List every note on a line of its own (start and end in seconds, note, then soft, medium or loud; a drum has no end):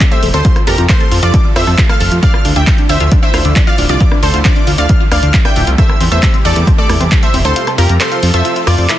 0.00 0.43 C3 medium
0.00 0.43 G3 medium
0.00 8.99 A3 medium
0.00 0.04 C4 loud
0.00 0.43 E4 medium
0.00 0.43 G4 medium
0.00 kick loud
0.00 clap loud
0.00 closed hi-hat medium
0.12 0.20 A3 medium
0.12 0.27 C5 medium
0.12 0.27 E5 medium
0.12 0.27 E6 medium
0.12 closed hi-hat soft
0.23 0.31 E1 loud
0.23 0.28 A3 medium
0.23 open hi-hat loud
0.34 0.42 D2 medium
0.34 0.37 C4 loud
0.34 0.57 A4 medium
0.34 0.57 C5 medium
0.34 0.57 C6 loud
0.34 closed hi-hat medium
0.45 2.21 C3 medium
0.45 5.74 F3 medium
0.45 0.53 F4 medium
0.45 5.74 F4 medium
0.45 2.21 A4 medium
0.45 kick loud
0.45 closed hi-hat medium
0.56 0.61 F4 medium
0.56 cross-stick medium
0.56 closed hi-hat soft
0.67 0.76 F2 medium
0.67 0.83 G4 medium
0.67 0.70 A4 loud
0.67 0.83 A#4 medium
0.67 0.83 A#5 medium
0.67 open hi-hat loud
0.78 0.87 F2 medium
0.78 0.86 F4 medium
0.78 closed hi-hat medium
0.89 0.95 F4 medium
0.89 1.12 A4 medium
0.89 1.12 C5 loud
0.89 1.12 C6 loud
0.89 kick loud
0.89 clap loud
0.89 closed hi-hat medium
1.00 1.04 A4 loud
1.00 closed hi-hat soft
1.12 1.20 F2 loud
1.12 1.20 F4 medium
1.12 open hi-hat loud
1.23 1.31 F2 medium
1.23 1.46 F4 medium
1.23 1.28 F4 medium
1.23 1.46 D5 medium
1.23 1.46 D6 loud
1.23 closed hi-hat medium
1.34 1.37 A4 loud
1.34 kick loud
1.34 closed hi-hat medium
1.45 1.53 F4 medium
1.56 1.64 F2 medium
1.56 1.61 F4 medium
1.56 1.79 C5 medium
1.56 1.79 E5 loud
1.56 1.79 E6 loud
1.56 cross-stick medium
1.56 open hi-hat loud
1.67 1.75 F2 medium
1.67 1.70 A4 loud
1.67 open hi-hat medium
1.78 1.86 F4 medium
1.78 kick loud
1.78 clap loud
1.78 closed hi-hat medium
1.89 1.95 F4 medium
1.89 2.13 A4 medium
1.89 2.13 F5 loud
1.89 2.12 F6 loud
1.89 cross-stick medium
1.89 closed hi-hat soft
2.00 2.09 F1 loud
2.00 2.04 A4 loud
2.00 open hi-hat loud
2.12 2.20 F2 medium
2.12 2.20 F4 medium
2.12 closed hi-hat medium
2.23 5.75 D3 medium
2.23 2.28 D4 medium
2.23 5.75 E4 medium
2.23 2.46 D5 medium
2.23 2.46 F5 loud
2.23 2.46 F6 loud
2.23 kick loud
2.23 closed hi-hat medium
2.34 2.37 F4 loud
2.34 cross-stick medium
2.45 2.53 D2 loud
2.45 2.53 D4 medium
2.45 open hi-hat loud
2.56 2.64 D2 medium
2.56 2.61 D4 medium
2.56 2.79 E5 medium
2.56 2.79 G5 medium
2.56 2.79 G6 medium
2.56 closed hi-hat medium
2.67 2.70 F4 loud
2.67 kick loud
2.67 clap loud
2.67 closed hi-hat medium
2.78 2.86 D4 medium
2.78 closed hi-hat soft
2.89 2.98 D2 loud
2.89 2.95 D4 medium
2.89 3.12 C5 medium
2.89 3.12 E5 loud
2.89 3.12 E6 medium
2.89 open hi-hat loud
3.00 3.09 D2 medium
3.00 3.04 F4 loud
3.00 closed hi-hat medium
3.12 3.20 D4 medium
3.12 kick loud
3.12 closed hi-hat medium
3.23 3.28 D4 medium
3.23 3.53 C5 medium
3.23 3.53 E5 loud
3.23 3.53 E6 loud
3.34 3.42 D2 medium
3.34 3.37 F4 loud
3.34 cross-stick medium
3.34 open hi-hat loud
3.45 3.53 D2 medium
3.45 3.53 D4 medium
3.45 closed hi-hat medium
3.56 3.61 D4 medium
3.56 kick loud
3.56 clap loud
3.56 closed hi-hat medium
3.67 3.70 F4 loud
3.67 3.83 D5 medium
3.67 3.83 F5 medium
3.67 3.83 F6 medium
3.67 closed hi-hat soft
3.78 3.87 D1 loud
3.78 3.86 D4 medium
3.78 open hi-hat loud
3.89 3.98 C2 medium
3.89 3.95 D4 medium
3.89 4.12 F4 medium
3.89 4.12 D5 medium
3.89 4.12 D6 loud
3.89 closed hi-hat medium
4.00 4.04 F4 loud
4.00 kick loud
4.00 closed hi-hat medium
4.12 4.20 D4 medium
4.12 cross-stick medium
4.23 4.31 D2 loud
4.23 4.28 D4 medium
4.23 4.38 A4 medium
4.23 4.38 C5 medium
4.23 4.38 C6 loud
4.23 open hi-hat loud
4.34 4.42 D2 medium
4.34 4.37 F4 loud
4.34 closed hi-hat medium
4.45 4.53 D4 medium
4.45 4.68 F4 medium
4.45 4.68 D5 medium
4.45 4.68 D6 loud
4.45 kick loud
4.45 clap loud
4.45 closed hi-hat medium
4.56 4.61 D4 medium
4.56 closed hi-hat soft
4.67 4.76 D2 medium
4.67 4.70 F4 loud
4.67 open hi-hat loud
4.78 4.87 D2 medium
4.78 4.86 D4 medium
4.78 5.01 D5 medium
4.78 5.01 F5 medium
4.78 5.01 F6 loud
4.78 closed hi-hat medium
4.89 4.95 D4 medium
4.89 kick loud
4.89 closed hi-hat medium
5.00 5.04 F4 loud
5.12 5.20 D2 medium
5.12 5.20 D4 medium
5.12 5.35 D5 medium
5.12 5.35 F5 medium
5.12 5.35 F6 loud
5.12 cross-stick medium
5.12 open hi-hat loud
5.23 5.31 D2 medium
5.23 5.28 D4 medium
5.23 closed hi-hat medium
5.34 5.37 F4 loud
5.34 kick loud
5.34 clap loud
5.34 closed hi-hat medium
5.45 5.53 D4 medium
5.45 5.68 E5 medium
5.45 5.68 G5 loud
5.45 5.68 G6 loud
5.45 cross-stick medium
5.45 closed hi-hat soft
5.56 5.64 D1 loud
5.56 5.61 D4 medium
5.56 open hi-hat loud
5.67 5.76 C2 medium
5.67 5.70 F4 loud
5.67 closed hi-hat medium
5.78 8.99 C3 medium
5.78 7.54 G3 medium
5.78 5.86 A3 medium
5.78 7.54 E4 medium
5.78 7.54 G4 medium
5.78 6.01 C5 medium
5.78 6.01 E5 loud
5.78 6.01 E6 loud
5.78 kick loud
5.78 closed hi-hat medium
5.89 5.95 A3 medium
5.89 cross-stick medium
6.01 6.09 E2 loud
6.01 6.04 C4 loud
6.01 open hi-hat loud
6.12 6.20 E2 medium
6.12 6.20 A3 medium
6.12 6.35 C5 medium
6.12 6.35 E5 medium
6.12 6.35 E6 medium
6.12 closed hi-hat medium
6.23 6.28 A3 medium
6.23 kick loud
6.23 clap loud
6.23 closed hi-hat medium
6.34 6.37 C4 loud
6.34 closed hi-hat soft
6.45 6.53 E2 medium
6.45 6.53 A3 medium
6.45 6.68 A4 medium
6.45 6.68 D5 loud
6.45 6.68 D6 loud
6.45 open hi-hat loud
6.56 6.64 E2 medium
6.56 6.61 A3 medium
6.56 closed hi-hat medium
6.67 6.70 C4 loud
6.67 kick loud
6.67 closed hi-hat medium
6.78 6.86 A3 medium
6.78 7.09 A4 medium
6.78 7.09 D5 loud
6.78 7.09 D6 medium
6.89 6.98 E2 medium
6.89 6.95 A3 medium
6.89 cross-stick medium
6.89 open hi-hat loud
7.00 7.09 E2 medium
7.00 7.04 C4 loud
7.00 closed hi-hat medium
7.12 7.20 A3 medium
7.12 kick loud
7.12 clap loud
7.12 closed hi-hat medium
7.23 7.28 A3 medium
7.23 7.38 C5 medium
7.23 7.38 E5 medium
7.23 7.38 E6 medium
7.23 closed hi-hat soft
7.34 7.42 E1 loud
7.34 7.37 C4 loud
7.34 open hi-hat loud
7.45 7.53 D2 medium
7.45 7.53 A3 medium
7.45 7.68 A4 medium
7.45 7.68 C5 medium
7.45 7.68 C6 loud
7.45 closed hi-hat medium
7.56 8.99 F3 medium
7.56 7.61 F4 medium
7.56 8.99 F4 medium
7.56 8.99 A4 medium
7.56 closed hi-hat medium
7.67 7.70 A4 loud
7.67 cross-stick medium
7.67 closed hi-hat soft
7.78 7.87 F2 loud
7.78 7.86 F4 medium
7.78 7.94 G4 medium
7.78 7.94 A#4 medium
7.78 7.94 A#5 medium
7.78 open hi-hat loud
7.89 7.98 F2 medium
7.89 7.95 F4 medium
7.89 closed hi-hat medium
8.00 8.24 A4 medium
8.00 8.04 A4 loud
8.00 8.24 C5 loud
8.00 8.24 C6 loud
8.00 clap loud
8.00 closed hi-hat medium
8.12 8.20 F4 medium
8.12 closed hi-hat soft
8.23 8.31 F2 medium
8.23 8.28 F4 medium
8.23 open hi-hat loud
8.34 8.42 F2 medium
8.34 8.37 A4 loud
8.34 8.57 C5 medium
8.34 8.57 E5 loud
8.34 8.57 E6 loud
8.34 closed hi-hat medium
8.45 8.53 F4 medium
8.45 closed hi-hat medium
8.56 8.61 F4 medium
8.56 closed hi-hat soft
8.67 8.75 F2 medium
8.67 8.90 F4 medium
8.67 8.72 F4 medium
8.67 8.90 D5 loud
8.67 8.90 D6 loud
8.67 cross-stick medium
8.67 open hi-hat loud
8.78 8.87 F2 medium
8.78 8.84 C5 medium
8.78 open hi-hat medium
8.89 8.97 E4 loud
8.89 cross-stick medium
8.89 clap loud
8.89 closed hi-hat medium